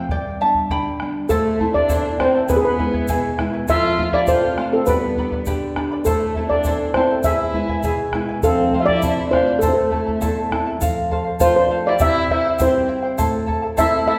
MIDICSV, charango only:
0, 0, Header, 1, 2, 480
1, 0, Start_track
1, 0, Key_signature, 0, "minor"
1, 0, Tempo, 594648
1, 80, Time_signature, 2, 2, 24, 8
1, 11453, End_track
2, 0, Start_track
2, 0, Title_t, "Charango"
2, 0, Program_c, 0, 24
2, 89, Note_on_c, 0, 74, 69
2, 93, Note_on_c, 0, 79, 75
2, 309, Note_off_c, 0, 74, 0
2, 330, Note_on_c, 0, 76, 66
2, 332, Note_off_c, 0, 79, 0
2, 335, Note_on_c, 0, 81, 73
2, 550, Note_off_c, 0, 76, 0
2, 571, Note_off_c, 0, 81, 0
2, 571, Note_on_c, 0, 79, 71
2, 575, Note_on_c, 0, 83, 93
2, 902, Note_off_c, 0, 79, 0
2, 904, Note_off_c, 0, 83, 0
2, 1045, Note_on_c, 0, 69, 66
2, 1049, Note_on_c, 0, 76, 78
2, 1050, Note_on_c, 0, 64, 72
2, 1053, Note_on_c, 0, 72, 75
2, 1053, Note_on_c, 0, 81, 79
2, 1275, Note_off_c, 0, 76, 0
2, 1279, Note_off_c, 0, 64, 0
2, 1282, Note_off_c, 0, 69, 0
2, 1283, Note_off_c, 0, 72, 0
2, 1285, Note_on_c, 0, 76, 51
2, 1288, Note_off_c, 0, 81, 0
2, 1289, Note_on_c, 0, 64, 57
2, 1292, Note_on_c, 0, 72, 66
2, 1297, Note_on_c, 0, 81, 67
2, 1390, Note_off_c, 0, 81, 0
2, 1397, Note_off_c, 0, 72, 0
2, 1400, Note_on_c, 0, 81, 48
2, 1404, Note_off_c, 0, 64, 0
2, 1404, Note_off_c, 0, 76, 0
2, 1407, Note_on_c, 0, 72, 48
2, 1414, Note_on_c, 0, 64, 43
2, 1520, Note_off_c, 0, 64, 0
2, 1521, Note_off_c, 0, 72, 0
2, 1522, Note_off_c, 0, 81, 0
2, 1527, Note_on_c, 0, 76, 86
2, 1528, Note_on_c, 0, 69, 76
2, 1530, Note_on_c, 0, 64, 98
2, 1531, Note_on_c, 0, 72, 84
2, 1533, Note_on_c, 0, 81, 87
2, 1757, Note_off_c, 0, 76, 0
2, 1763, Note_off_c, 0, 69, 0
2, 1764, Note_off_c, 0, 64, 0
2, 1765, Note_off_c, 0, 72, 0
2, 1766, Note_on_c, 0, 76, 62
2, 1769, Note_off_c, 0, 81, 0
2, 1773, Note_on_c, 0, 64, 66
2, 1775, Note_on_c, 0, 72, 62
2, 1780, Note_on_c, 0, 81, 65
2, 1879, Note_off_c, 0, 81, 0
2, 1885, Note_off_c, 0, 72, 0
2, 1885, Note_off_c, 0, 76, 0
2, 1889, Note_off_c, 0, 64, 0
2, 1889, Note_on_c, 0, 81, 61
2, 1895, Note_on_c, 0, 72, 47
2, 1898, Note_on_c, 0, 64, 51
2, 2002, Note_off_c, 0, 64, 0
2, 2003, Note_off_c, 0, 72, 0
2, 2006, Note_on_c, 0, 68, 74
2, 2006, Note_on_c, 0, 76, 65
2, 2007, Note_off_c, 0, 81, 0
2, 2011, Note_on_c, 0, 64, 79
2, 2013, Note_on_c, 0, 71, 76
2, 2015, Note_on_c, 0, 80, 80
2, 2238, Note_off_c, 0, 76, 0
2, 2244, Note_off_c, 0, 64, 0
2, 2246, Note_off_c, 0, 68, 0
2, 2247, Note_off_c, 0, 71, 0
2, 2247, Note_on_c, 0, 76, 60
2, 2250, Note_off_c, 0, 80, 0
2, 2254, Note_on_c, 0, 64, 63
2, 2257, Note_on_c, 0, 71, 58
2, 2261, Note_on_c, 0, 80, 69
2, 2361, Note_off_c, 0, 80, 0
2, 2365, Note_off_c, 0, 71, 0
2, 2366, Note_off_c, 0, 76, 0
2, 2369, Note_off_c, 0, 64, 0
2, 2370, Note_on_c, 0, 80, 60
2, 2375, Note_on_c, 0, 71, 49
2, 2380, Note_on_c, 0, 64, 46
2, 2483, Note_off_c, 0, 64, 0
2, 2488, Note_off_c, 0, 80, 0
2, 2490, Note_off_c, 0, 71, 0
2, 2493, Note_on_c, 0, 64, 94
2, 2493, Note_on_c, 0, 76, 80
2, 2494, Note_on_c, 0, 68, 86
2, 2500, Note_on_c, 0, 71, 91
2, 2502, Note_on_c, 0, 80, 89
2, 2723, Note_off_c, 0, 76, 0
2, 2727, Note_off_c, 0, 64, 0
2, 2729, Note_off_c, 0, 68, 0
2, 2732, Note_on_c, 0, 76, 71
2, 2733, Note_off_c, 0, 71, 0
2, 2733, Note_off_c, 0, 80, 0
2, 2737, Note_on_c, 0, 64, 73
2, 2743, Note_on_c, 0, 71, 72
2, 2746, Note_on_c, 0, 80, 74
2, 2840, Note_off_c, 0, 80, 0
2, 2845, Note_off_c, 0, 71, 0
2, 2849, Note_off_c, 0, 76, 0
2, 2850, Note_on_c, 0, 80, 57
2, 2851, Note_off_c, 0, 64, 0
2, 2855, Note_on_c, 0, 71, 49
2, 2860, Note_on_c, 0, 64, 43
2, 2966, Note_off_c, 0, 71, 0
2, 2968, Note_off_c, 0, 80, 0
2, 2970, Note_on_c, 0, 69, 77
2, 2973, Note_off_c, 0, 64, 0
2, 2973, Note_on_c, 0, 72, 70
2, 3194, Note_off_c, 0, 69, 0
2, 3204, Note_off_c, 0, 72, 0
2, 3204, Note_on_c, 0, 69, 56
2, 3213, Note_on_c, 0, 72, 63
2, 3219, Note_on_c, 0, 77, 63
2, 3320, Note_off_c, 0, 77, 0
2, 3325, Note_off_c, 0, 69, 0
2, 3326, Note_off_c, 0, 72, 0
2, 3329, Note_on_c, 0, 77, 56
2, 3338, Note_on_c, 0, 72, 43
2, 3444, Note_off_c, 0, 72, 0
2, 3445, Note_on_c, 0, 69, 89
2, 3447, Note_off_c, 0, 77, 0
2, 3453, Note_on_c, 0, 72, 86
2, 3456, Note_on_c, 0, 77, 82
2, 3683, Note_off_c, 0, 69, 0
2, 3689, Note_off_c, 0, 72, 0
2, 3691, Note_off_c, 0, 77, 0
2, 3693, Note_on_c, 0, 69, 62
2, 3702, Note_on_c, 0, 72, 74
2, 3708, Note_on_c, 0, 77, 69
2, 3803, Note_off_c, 0, 77, 0
2, 3809, Note_off_c, 0, 69, 0
2, 3809, Note_off_c, 0, 72, 0
2, 3813, Note_on_c, 0, 77, 54
2, 3824, Note_on_c, 0, 72, 44
2, 3929, Note_off_c, 0, 77, 0
2, 3934, Note_off_c, 0, 72, 0
2, 3937, Note_on_c, 0, 67, 66
2, 3943, Note_on_c, 0, 71, 72
2, 3943, Note_on_c, 0, 79, 72
2, 3945, Note_on_c, 0, 74, 72
2, 3947, Note_on_c, 0, 83, 80
2, 4170, Note_off_c, 0, 79, 0
2, 4172, Note_off_c, 0, 67, 0
2, 4174, Note_off_c, 0, 71, 0
2, 4175, Note_off_c, 0, 74, 0
2, 4176, Note_off_c, 0, 83, 0
2, 4180, Note_on_c, 0, 79, 58
2, 4183, Note_on_c, 0, 71, 57
2, 4185, Note_on_c, 0, 74, 58
2, 4190, Note_on_c, 0, 83, 70
2, 4282, Note_off_c, 0, 83, 0
2, 4292, Note_off_c, 0, 74, 0
2, 4292, Note_on_c, 0, 83, 46
2, 4293, Note_off_c, 0, 79, 0
2, 4294, Note_off_c, 0, 71, 0
2, 4302, Note_on_c, 0, 74, 48
2, 4305, Note_on_c, 0, 71, 43
2, 4404, Note_off_c, 0, 71, 0
2, 4408, Note_off_c, 0, 74, 0
2, 4409, Note_off_c, 0, 83, 0
2, 4413, Note_on_c, 0, 67, 79
2, 4414, Note_on_c, 0, 71, 84
2, 4414, Note_on_c, 0, 79, 89
2, 4418, Note_on_c, 0, 74, 82
2, 4421, Note_on_c, 0, 83, 89
2, 4639, Note_off_c, 0, 79, 0
2, 4646, Note_off_c, 0, 71, 0
2, 4649, Note_off_c, 0, 67, 0
2, 4649, Note_on_c, 0, 79, 65
2, 4650, Note_off_c, 0, 74, 0
2, 4654, Note_off_c, 0, 83, 0
2, 4656, Note_on_c, 0, 71, 60
2, 4660, Note_on_c, 0, 74, 69
2, 4664, Note_on_c, 0, 83, 75
2, 4765, Note_off_c, 0, 83, 0
2, 4767, Note_off_c, 0, 79, 0
2, 4771, Note_off_c, 0, 71, 0
2, 4771, Note_off_c, 0, 74, 0
2, 4775, Note_on_c, 0, 83, 53
2, 4780, Note_on_c, 0, 74, 45
2, 4784, Note_on_c, 0, 71, 47
2, 4889, Note_on_c, 0, 72, 81
2, 4891, Note_off_c, 0, 74, 0
2, 4891, Note_off_c, 0, 83, 0
2, 4893, Note_off_c, 0, 71, 0
2, 4894, Note_on_c, 0, 69, 77
2, 4894, Note_on_c, 0, 76, 68
2, 4896, Note_on_c, 0, 64, 68
2, 4897, Note_on_c, 0, 81, 89
2, 5123, Note_off_c, 0, 76, 0
2, 5128, Note_off_c, 0, 72, 0
2, 5130, Note_off_c, 0, 69, 0
2, 5131, Note_off_c, 0, 64, 0
2, 5132, Note_off_c, 0, 81, 0
2, 5133, Note_on_c, 0, 76, 55
2, 5141, Note_on_c, 0, 64, 65
2, 5141, Note_on_c, 0, 69, 56
2, 5144, Note_on_c, 0, 81, 65
2, 5247, Note_off_c, 0, 81, 0
2, 5249, Note_off_c, 0, 69, 0
2, 5249, Note_off_c, 0, 76, 0
2, 5254, Note_off_c, 0, 64, 0
2, 5256, Note_on_c, 0, 81, 52
2, 5259, Note_on_c, 0, 69, 47
2, 5265, Note_on_c, 0, 64, 44
2, 5370, Note_off_c, 0, 64, 0
2, 5371, Note_off_c, 0, 81, 0
2, 5372, Note_off_c, 0, 69, 0
2, 5372, Note_on_c, 0, 72, 79
2, 5375, Note_on_c, 0, 76, 84
2, 5380, Note_on_c, 0, 64, 91
2, 5381, Note_on_c, 0, 69, 85
2, 5383, Note_on_c, 0, 81, 83
2, 5600, Note_off_c, 0, 76, 0
2, 5609, Note_off_c, 0, 72, 0
2, 5610, Note_off_c, 0, 64, 0
2, 5610, Note_on_c, 0, 76, 62
2, 5614, Note_off_c, 0, 69, 0
2, 5615, Note_off_c, 0, 81, 0
2, 5620, Note_on_c, 0, 64, 57
2, 5623, Note_on_c, 0, 69, 70
2, 5624, Note_on_c, 0, 81, 69
2, 5726, Note_off_c, 0, 81, 0
2, 5728, Note_off_c, 0, 76, 0
2, 5730, Note_off_c, 0, 69, 0
2, 5733, Note_off_c, 0, 64, 0
2, 5736, Note_on_c, 0, 81, 54
2, 5740, Note_on_c, 0, 69, 50
2, 5744, Note_on_c, 0, 64, 49
2, 5850, Note_off_c, 0, 64, 0
2, 5851, Note_off_c, 0, 81, 0
2, 5853, Note_off_c, 0, 69, 0
2, 5855, Note_on_c, 0, 76, 67
2, 5856, Note_on_c, 0, 68, 69
2, 5860, Note_on_c, 0, 64, 75
2, 5860, Note_on_c, 0, 71, 75
2, 5864, Note_on_c, 0, 80, 75
2, 6074, Note_off_c, 0, 76, 0
2, 6080, Note_off_c, 0, 64, 0
2, 6084, Note_on_c, 0, 76, 58
2, 6086, Note_off_c, 0, 71, 0
2, 6087, Note_off_c, 0, 80, 0
2, 6090, Note_on_c, 0, 64, 59
2, 6091, Note_off_c, 0, 68, 0
2, 6096, Note_on_c, 0, 71, 66
2, 6097, Note_on_c, 0, 80, 70
2, 6201, Note_off_c, 0, 80, 0
2, 6205, Note_off_c, 0, 76, 0
2, 6207, Note_off_c, 0, 71, 0
2, 6208, Note_off_c, 0, 64, 0
2, 6211, Note_on_c, 0, 80, 55
2, 6216, Note_on_c, 0, 71, 51
2, 6224, Note_on_c, 0, 64, 48
2, 6322, Note_off_c, 0, 64, 0
2, 6322, Note_off_c, 0, 71, 0
2, 6323, Note_off_c, 0, 80, 0
2, 6326, Note_on_c, 0, 68, 84
2, 6329, Note_on_c, 0, 76, 81
2, 6331, Note_on_c, 0, 71, 83
2, 6332, Note_on_c, 0, 64, 87
2, 6333, Note_on_c, 0, 80, 96
2, 6555, Note_off_c, 0, 76, 0
2, 6556, Note_off_c, 0, 64, 0
2, 6563, Note_off_c, 0, 71, 0
2, 6565, Note_off_c, 0, 80, 0
2, 6565, Note_on_c, 0, 76, 72
2, 6566, Note_off_c, 0, 68, 0
2, 6566, Note_on_c, 0, 64, 74
2, 6572, Note_on_c, 0, 71, 72
2, 6575, Note_on_c, 0, 80, 75
2, 6678, Note_off_c, 0, 80, 0
2, 6682, Note_off_c, 0, 71, 0
2, 6686, Note_off_c, 0, 64, 0
2, 6686, Note_off_c, 0, 76, 0
2, 6688, Note_on_c, 0, 80, 56
2, 6691, Note_on_c, 0, 71, 52
2, 6701, Note_on_c, 0, 64, 51
2, 6800, Note_off_c, 0, 71, 0
2, 6803, Note_on_c, 0, 69, 67
2, 6807, Note_off_c, 0, 80, 0
2, 6808, Note_on_c, 0, 72, 79
2, 6812, Note_on_c, 0, 77, 89
2, 6814, Note_off_c, 0, 64, 0
2, 7040, Note_off_c, 0, 69, 0
2, 7048, Note_off_c, 0, 72, 0
2, 7049, Note_off_c, 0, 77, 0
2, 7050, Note_on_c, 0, 69, 59
2, 7057, Note_on_c, 0, 72, 67
2, 7060, Note_on_c, 0, 77, 69
2, 7159, Note_off_c, 0, 77, 0
2, 7166, Note_off_c, 0, 72, 0
2, 7168, Note_off_c, 0, 69, 0
2, 7169, Note_on_c, 0, 77, 58
2, 7182, Note_on_c, 0, 72, 40
2, 7288, Note_off_c, 0, 72, 0
2, 7288, Note_off_c, 0, 77, 0
2, 7292, Note_on_c, 0, 69, 84
2, 7298, Note_on_c, 0, 72, 83
2, 7518, Note_off_c, 0, 69, 0
2, 7524, Note_off_c, 0, 72, 0
2, 7527, Note_on_c, 0, 69, 62
2, 7534, Note_on_c, 0, 72, 63
2, 7539, Note_on_c, 0, 77, 75
2, 7636, Note_off_c, 0, 77, 0
2, 7642, Note_off_c, 0, 72, 0
2, 7645, Note_on_c, 0, 77, 59
2, 7647, Note_off_c, 0, 69, 0
2, 7656, Note_on_c, 0, 72, 44
2, 7752, Note_off_c, 0, 72, 0
2, 7762, Note_on_c, 0, 72, 67
2, 7764, Note_off_c, 0, 77, 0
2, 7767, Note_on_c, 0, 76, 79
2, 7770, Note_on_c, 0, 64, 65
2, 7770, Note_on_c, 0, 69, 75
2, 7772, Note_on_c, 0, 81, 74
2, 7989, Note_off_c, 0, 76, 0
2, 7993, Note_off_c, 0, 64, 0
2, 7998, Note_on_c, 0, 76, 59
2, 7999, Note_off_c, 0, 69, 0
2, 8002, Note_off_c, 0, 81, 0
2, 8003, Note_on_c, 0, 64, 63
2, 8004, Note_off_c, 0, 72, 0
2, 8009, Note_on_c, 0, 69, 60
2, 8012, Note_on_c, 0, 81, 63
2, 8115, Note_off_c, 0, 81, 0
2, 8120, Note_off_c, 0, 69, 0
2, 8122, Note_off_c, 0, 76, 0
2, 8124, Note_on_c, 0, 81, 56
2, 8125, Note_off_c, 0, 64, 0
2, 8129, Note_on_c, 0, 69, 50
2, 8135, Note_on_c, 0, 64, 41
2, 8234, Note_off_c, 0, 69, 0
2, 8235, Note_off_c, 0, 64, 0
2, 8238, Note_off_c, 0, 81, 0
2, 8240, Note_on_c, 0, 72, 72
2, 8244, Note_on_c, 0, 69, 94
2, 8244, Note_on_c, 0, 76, 88
2, 8245, Note_on_c, 0, 64, 85
2, 8248, Note_on_c, 0, 81, 88
2, 8474, Note_off_c, 0, 76, 0
2, 8479, Note_off_c, 0, 64, 0
2, 8483, Note_off_c, 0, 72, 0
2, 8484, Note_on_c, 0, 76, 66
2, 8485, Note_off_c, 0, 69, 0
2, 8485, Note_off_c, 0, 81, 0
2, 8489, Note_on_c, 0, 64, 62
2, 8495, Note_on_c, 0, 81, 78
2, 8496, Note_on_c, 0, 69, 71
2, 8598, Note_off_c, 0, 81, 0
2, 8603, Note_off_c, 0, 69, 0
2, 8605, Note_off_c, 0, 76, 0
2, 8607, Note_off_c, 0, 64, 0
2, 8607, Note_on_c, 0, 81, 52
2, 8613, Note_on_c, 0, 69, 49
2, 8616, Note_on_c, 0, 64, 49
2, 8714, Note_off_c, 0, 69, 0
2, 8723, Note_on_c, 0, 69, 83
2, 8727, Note_off_c, 0, 81, 0
2, 8728, Note_on_c, 0, 72, 79
2, 8731, Note_off_c, 0, 64, 0
2, 8734, Note_on_c, 0, 77, 93
2, 8958, Note_off_c, 0, 69, 0
2, 8962, Note_off_c, 0, 72, 0
2, 8967, Note_off_c, 0, 77, 0
2, 8968, Note_on_c, 0, 69, 74
2, 8972, Note_on_c, 0, 72, 77
2, 8977, Note_on_c, 0, 77, 82
2, 9067, Note_off_c, 0, 77, 0
2, 9073, Note_off_c, 0, 72, 0
2, 9076, Note_on_c, 0, 77, 57
2, 9087, Note_off_c, 0, 69, 0
2, 9092, Note_on_c, 0, 72, 50
2, 9193, Note_off_c, 0, 72, 0
2, 9195, Note_off_c, 0, 77, 0
2, 9200, Note_on_c, 0, 69, 93
2, 9203, Note_on_c, 0, 72, 93
2, 9205, Note_on_c, 0, 77, 95
2, 9434, Note_off_c, 0, 69, 0
2, 9444, Note_off_c, 0, 72, 0
2, 9444, Note_on_c, 0, 69, 74
2, 9445, Note_off_c, 0, 77, 0
2, 9452, Note_on_c, 0, 72, 70
2, 9456, Note_on_c, 0, 77, 70
2, 9559, Note_off_c, 0, 77, 0
2, 9564, Note_off_c, 0, 69, 0
2, 9565, Note_off_c, 0, 72, 0
2, 9569, Note_on_c, 0, 77, 59
2, 9579, Note_on_c, 0, 72, 48
2, 9677, Note_off_c, 0, 72, 0
2, 9681, Note_off_c, 0, 77, 0
2, 9684, Note_on_c, 0, 67, 74
2, 9684, Note_on_c, 0, 76, 79
2, 9686, Note_on_c, 0, 64, 81
2, 9687, Note_on_c, 0, 72, 78
2, 9688, Note_on_c, 0, 79, 89
2, 9913, Note_off_c, 0, 76, 0
2, 9917, Note_off_c, 0, 64, 0
2, 9919, Note_off_c, 0, 72, 0
2, 9922, Note_on_c, 0, 76, 65
2, 9924, Note_off_c, 0, 67, 0
2, 9926, Note_off_c, 0, 79, 0
2, 9927, Note_on_c, 0, 64, 67
2, 9928, Note_on_c, 0, 72, 66
2, 9935, Note_on_c, 0, 79, 73
2, 10037, Note_off_c, 0, 79, 0
2, 10043, Note_off_c, 0, 76, 0
2, 10045, Note_off_c, 0, 72, 0
2, 10046, Note_off_c, 0, 64, 0
2, 10047, Note_on_c, 0, 79, 62
2, 10054, Note_on_c, 0, 72, 50
2, 10057, Note_on_c, 0, 64, 46
2, 10154, Note_off_c, 0, 64, 0
2, 10157, Note_off_c, 0, 72, 0
2, 10158, Note_on_c, 0, 67, 85
2, 10159, Note_off_c, 0, 79, 0
2, 10162, Note_on_c, 0, 76, 96
2, 10164, Note_on_c, 0, 64, 95
2, 10166, Note_on_c, 0, 72, 98
2, 10168, Note_on_c, 0, 79, 93
2, 10388, Note_off_c, 0, 76, 0
2, 10390, Note_off_c, 0, 64, 0
2, 10393, Note_off_c, 0, 72, 0
2, 10397, Note_off_c, 0, 79, 0
2, 10397, Note_on_c, 0, 76, 63
2, 10400, Note_on_c, 0, 64, 65
2, 10401, Note_off_c, 0, 67, 0
2, 10403, Note_on_c, 0, 72, 76
2, 10407, Note_on_c, 0, 79, 75
2, 10504, Note_off_c, 0, 79, 0
2, 10511, Note_off_c, 0, 72, 0
2, 10513, Note_on_c, 0, 79, 55
2, 10514, Note_off_c, 0, 64, 0
2, 10521, Note_off_c, 0, 76, 0
2, 10521, Note_on_c, 0, 72, 55
2, 10523, Note_on_c, 0, 64, 55
2, 10628, Note_off_c, 0, 72, 0
2, 10631, Note_off_c, 0, 64, 0
2, 10636, Note_on_c, 0, 76, 91
2, 10638, Note_on_c, 0, 72, 98
2, 10639, Note_off_c, 0, 79, 0
2, 10640, Note_on_c, 0, 64, 98
2, 10644, Note_on_c, 0, 69, 94
2, 10646, Note_on_c, 0, 81, 103
2, 10862, Note_off_c, 0, 76, 0
2, 10869, Note_off_c, 0, 64, 0
2, 10870, Note_off_c, 0, 69, 0
2, 10871, Note_on_c, 0, 76, 78
2, 10875, Note_off_c, 0, 81, 0
2, 10879, Note_on_c, 0, 64, 67
2, 10880, Note_off_c, 0, 72, 0
2, 10880, Note_on_c, 0, 69, 72
2, 10885, Note_on_c, 0, 81, 81
2, 10986, Note_off_c, 0, 81, 0
2, 10995, Note_off_c, 0, 69, 0
2, 10996, Note_on_c, 0, 81, 57
2, 10997, Note_off_c, 0, 76, 0
2, 10998, Note_off_c, 0, 64, 0
2, 11005, Note_on_c, 0, 69, 56
2, 11008, Note_on_c, 0, 64, 48
2, 11109, Note_off_c, 0, 64, 0
2, 11111, Note_off_c, 0, 69, 0
2, 11112, Note_off_c, 0, 81, 0
2, 11115, Note_on_c, 0, 72, 92
2, 11117, Note_on_c, 0, 76, 97
2, 11118, Note_on_c, 0, 64, 98
2, 11121, Note_on_c, 0, 69, 93
2, 11122, Note_on_c, 0, 81, 102
2, 11348, Note_off_c, 0, 76, 0
2, 11354, Note_off_c, 0, 64, 0
2, 11356, Note_off_c, 0, 69, 0
2, 11357, Note_on_c, 0, 76, 69
2, 11358, Note_off_c, 0, 81, 0
2, 11359, Note_off_c, 0, 72, 0
2, 11363, Note_on_c, 0, 64, 69
2, 11365, Note_on_c, 0, 69, 76
2, 11367, Note_on_c, 0, 81, 76
2, 11453, Note_off_c, 0, 64, 0
2, 11453, Note_off_c, 0, 69, 0
2, 11453, Note_off_c, 0, 76, 0
2, 11453, Note_off_c, 0, 81, 0
2, 11453, End_track
0, 0, End_of_file